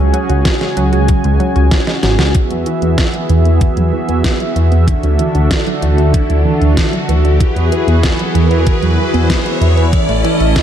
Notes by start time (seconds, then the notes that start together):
Already playing: C#3 C#4 F#4 G#4 G#5
0.00 C#2
0.14 F#3, closed hi-hat
0.30 C#2 F#4, closed hi-hat
0.45 F#3, kick, snare, closed hi-hat
0.61 G#3, snare, closed hi-hat
0.77 C#2 F#3, closed hi-hat
0.93 C#2 F#4, closed hi-hat
1.08 F#3, kick, closed hi-hat
1.24 C#2 G#3, closed hi-hat
1.40 F#3, closed hi-hat
1.56 C#2 F#4, closed hi-hat
1.71 F#3, kick, snare, closed hi-hat
1.87 G#3, snare, closed hi-hat
2.03 G#1 F#3, snare, closed hi-hat
2.19 C#2 F#4, snare, closed hi-hat
2.35 E3 B3 F#4 G#4 E5, kick, closed hi-hat, riser
2.50 E2 F#3, closed hi-hat
2.66 E3, closed hi-hat
2.82 E2 B3, closed hi-hat
2.98 E3, kick, snare, closed hi-hat
3.14 F#3, closed hi-hat
3.29 E2 E3, closed hi-hat
3.45 E2 B3, closed hi-hat
3.61 E3, kick, closed hi-hat
3.77 E2 F#3, closed hi-hat
3.93 E3
4.09 E2 B3, closed hi-hat
4.24 E3, kick, snare, closed hi-hat
4.40 F#3, closed hi-hat
4.56 E2 E3, closed hi-hat
4.72 E2 B3, closed hi-hat
4.87 D3 E3 D4 A4, kick, closed hi-hat
5.03 D2 F#3, closed hi-hat
5.19 E3, closed hi-hat
5.35 D2 D4, closed hi-hat
5.51 E3, kick, snare, closed hi-hat
5.67 F#3, closed hi-hat
5.82 D2 E3, closed hi-hat
5.98 D2 D4, closed hi-hat
6.14 E3, kick, closed hi-hat
6.30 D2 F#3, closed hi-hat
6.45 E3
6.61 D2 D4, closed hi-hat
6.77 E3, kick, snare, closed hi-hat
6.93 F#3, closed hi-hat
7.09 D2 E3, closed hi-hat
7.25 D2 D4, closed hi-hat
7.40 E3 E4 G#4 B4, kick, closed hi-hat
7.56 E2 F#3, closed hi-hat
7.72 E3, closed hi-hat
7.88 E2 B3, closed hi-hat
8.03 E3, kick, snare, closed hi-hat
8.19 F#3, closed hi-hat
8.35 E2 E3, closed hi-hat
8.51 E2 B3, closed hi-hat
8.67 E3, kick, closed hi-hat
8.82 E2 F#3, closed hi-hat
8.98 E3
9.14 E2 B3, closed hi-hat
9.30 E3, kick, snare, closed hi-hat
9.46 F#3, closed hi-hat
9.61 E2 E3, closed hi-hat
9.77 E2 B3, closed hi-hat
9.93 E3 C#4 A4, kick, closed hi-hat
10.09 A1 A3, closed hi-hat
10.25 E3, closed hi-hat
10.40 A1 E4, closed hi-hat
10.56 E3, kick, snare, closed hi-hat